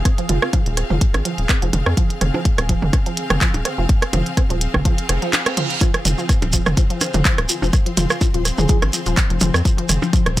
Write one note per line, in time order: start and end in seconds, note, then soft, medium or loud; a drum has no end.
0.00 10.40 C4 medium
0.00 5.82 G#4 medium
0.00 10.40 G#4 medium
0.00 10.40 F5 medium
0.00 7.21 F6 medium
0.05 0.11 C4 medium
0.05 kick loud
0.05 cross-stick soft
0.05 closed hi-hat medium
0.18 0.26 F3 loud
0.18 closed hi-hat soft
0.29 0.39 F1 medium
0.29 0.38 F4 medium
0.29 closed hi-hat medium
0.29 mid tom medium
0.42 0.48 C4 medium
0.42 0.49 F4 medium
0.42 cross-stick medium
0.53 0.63 F3 loud
0.53 kick loud
0.53 closed hi-hat medium
0.53 percussion blips soft
0.66 0.84 D#1 medium
0.66 closed hi-hat soft
0.77 0.83 C4 medium
0.77 cross-stick soft
0.77 closed hi-hat medium
0.90 0.98 F1 medium
0.90 0.98 F3 loud
0.90 mid tom medium
1.01 kick loud
1.01 closed hi-hat medium
1.14 1.22 G#1 medium
1.14 1.20 C4 medium
1.14 cross-stick medium
1.14 closed hi-hat soft
1.14 percussion blips soft
1.25 1.35 F3 loud
1.25 closed hi-hat medium
1.38 1.46 D#1 medium
1.38 closed hi-hat soft
1.49 1.56 C4 medium
1.49 kick loud
1.49 cross-stick soft
1.49 clap loud
1.49 closed hi-hat medium
1.62 1.70 F1 medium
1.62 1.70 F3 loud
1.62 closed hi-hat soft
1.73 1.83 F1 medium
1.73 closed hi-hat medium
1.73 mid tom medium
1.73 percussion blips soft
1.86 1.94 F2 medium
1.86 1.92 C4 medium
1.86 cross-stick medium
1.97 2.07 F3 loud
1.97 kick loud
1.97 closed hi-hat medium
2.10 closed hi-hat soft
2.21 2.31 F1 loud
2.21 2.28 C4 medium
2.21 cross-stick soft
2.21 closed hi-hat medium
2.21 mid tom medium
2.34 2.42 F3 loud
2.34 percussion blips soft
2.45 kick loud
2.45 closed hi-hat medium
2.58 2.76 D#1 medium
2.58 2.64 C4 medium
2.58 cross-stick medium
2.58 closed hi-hat soft
2.69 2.79 F3 loud
2.69 kick medium
2.69 closed hi-hat medium
2.82 2.90 F1 medium
2.82 mid tom medium
2.93 3.00 C4 medium
2.93 kick loud
2.93 cross-stick soft
2.93 closed hi-hat medium
2.93 percussion blips soft
3.06 3.14 F3 loud
3.06 closed hi-hat soft
3.17 closed hi-hat medium
3.30 3.38 F1 medium
3.30 3.36 C4 medium
3.30 cross-stick medium
3.30 closed hi-hat soft
3.30 mid tom medium
3.41 3.51 F3 loud
3.41 kick loud
3.41 clap loud
3.41 closed hi-hat medium
3.54 3.62 D#1 medium
3.54 closed hi-hat soft
3.54 percussion blips soft
3.65 3.72 C4 medium
3.65 cross-stick soft
3.65 closed hi-hat medium
3.78 3.86 F1 loud
3.78 3.86 F3 loud
3.89 kick loud
3.89 closed hi-hat medium
4.02 4.08 C4 medium
4.02 cross-stick medium
4.02 closed hi-hat soft
4.13 4.23 F1 medium
4.13 4.23 F3 loud
4.13 closed hi-hat medium
4.13 mid tom medium
4.13 percussion blips soft
4.26 closed hi-hat soft
4.37 4.43 C4 medium
4.37 kick loud
4.37 cross-stick soft
4.37 closed hi-hat medium
4.50 4.68 D#1 medium
4.50 4.58 F3 loud
4.50 closed hi-hat soft
4.61 closed hi-hat medium
4.74 4.82 F1 medium
4.74 4.80 C4 medium
4.74 kick medium
4.74 cross-stick medium
4.74 mid tom medium
4.74 percussion blips soft
4.85 4.95 F3 loud
4.85 kick loud
4.85 closed hi-hat medium
4.85 reverse cymbal medium
4.98 closed hi-hat soft
5.09 5.19 F1 loud
5.09 5.16 C4 medium
5.09 cross-stick soft
5.09 closed hi-hat medium
5.22 5.30 F3 loud
5.22 closed hi-hat soft
5.33 clap loud
5.33 closed hi-hat medium
5.33 percussion blips soft
5.46 5.52 C4 medium
5.46 cross-stick medium
5.46 closed hi-hat soft
5.57 5.67 F3 loud
5.57 closed hi-hat medium
5.57 mid tom medium
5.70 closed hi-hat soft
5.81 5.91 F3 loud
5.81 10.40 C5 medium
5.81 kick loud
5.81 closed hi-hat medium
5.81 percussion blips soft
5.81 shekere soft
5.94 cross-stick medium
5.94 closed hi-hat soft
6.05 6.15 F1 medium
6.05 6.09 F3 medium
6.05 closed hi-hat medium
6.05 mid tom medium
6.05 shekere medium
6.18 6.26 F3 loud
6.18 shekere soft
6.29 kick loud
6.29 cross-stick soft
6.29 closed hi-hat medium
6.29 shekere soft
6.42 6.59 D#1 loud
6.42 6.45 F3 medium
6.42 closed hi-hat soft
6.42 percussion blips soft
6.53 6.63 F3 loud
6.53 kick medium
6.53 closed hi-hat medium
6.53 shekere loud
6.66 6.74 F1 medium
6.66 cross-stick medium
6.66 mid tom medium
6.66 shekere soft
6.77 6.81 F3 medium
6.77 kick loud
6.77 closed hi-hat medium
6.77 shekere soft
6.90 6.98 F3 loud
6.90 closed hi-hat soft
7.01 cross-stick soft
7.01 closed hi-hat medium
7.01 percussion blips soft
7.01 shekere medium
7.14 7.22 F1 loud
7.14 7.17 F3 medium
7.14 closed hi-hat soft
7.14 mid tom loud
7.14 shekere soft
7.19 10.40 C6 medium
7.25 7.35 F3 loud
7.25 kick loud
7.25 clap loud
7.25 closed hi-hat medium
7.25 shekere soft
7.38 7.46 D#1 medium
7.38 cross-stick medium
7.38 closed hi-hat soft
7.49 7.53 F3 medium
7.49 closed hi-hat medium
7.49 shekere loud
7.62 7.70 F1 loud
7.62 7.70 F3 medium
7.62 percussion blips soft
7.62 shekere soft
7.73 kick loud
7.73 cross-stick soft
7.73 closed hi-hat medium
7.73 shekere soft
7.86 7.89 F3 medium
7.86 closed hi-hat soft
7.97 8.07 F1 medium
7.97 8.07 F3 loud
7.97 8.06 F4 medium
7.97 closed hi-hat loud
7.97 mid tom medium
7.97 shekere medium
8.10 8.17 F4 medium
8.10 cross-stick medium
8.10 shekere soft
8.21 8.25 F3 medium
8.21 kick loud
8.21 closed hi-hat medium
8.21 percussion blips soft
8.21 shekere medium
8.34 8.51 D#1 medium
8.34 8.42 F3 loud
8.34 closed hi-hat soft
8.45 cross-stick soft
8.45 closed hi-hat medium
8.45 shekere medium
8.58 8.66 F1 medium
8.58 8.61 F3 medium
8.58 8.65 G#4 medium
8.58 mid tom medium
8.58 shekere soft
8.69 8.79 F3 loud
8.69 8.78 G#4 medium
8.69 kick loud
8.69 closed hi-hat medium
8.69 shekere soft
8.82 8.90 G#1 medium
8.82 cross-stick medium
8.82 closed hi-hat soft
8.82 percussion blips soft
8.93 8.97 F3 medium
8.93 closed hi-hat loud
8.93 shekere medium
9.06 9.14 D#1 medium
9.06 9.14 F3 loud
9.06 closed hi-hat soft
9.06 shekere soft
9.17 kick loud
9.17 cross-stick soft
9.17 clap loud
9.17 closed hi-hat medium
9.17 shekere soft
9.30 9.38 F1 medium
9.30 9.33 F3 medium
9.30 closed hi-hat soft
9.40 9.51 F1 medium
9.40 9.51 F3 loud
9.40 closed hi-hat loud
9.40 mid tom medium
9.40 percussion blips soft
9.40 shekere medium
9.54 9.62 F2 medium
9.54 cross-stick medium
9.54 shekere soft
9.65 9.69 F3 medium
9.65 kick loud
9.65 closed hi-hat medium
9.65 shekere medium
9.78 9.86 F3 loud
9.78 closed hi-hat soft
9.89 9.99 F1 loud
9.89 cross-stick soft
9.89 closed hi-hat loud
9.89 mid tom medium
9.89 shekere medium
10.02 10.05 F3 medium
10.02 percussion blips soft
10.02 shekere soft
10.13 10.23 F3 loud
10.13 kick loud
10.13 closed hi-hat medium
10.13 shekere medium
10.26 10.40 D#1 medium
10.26 cross-stick medium
10.26 closed hi-hat soft
10.33 10.40 A#5 medium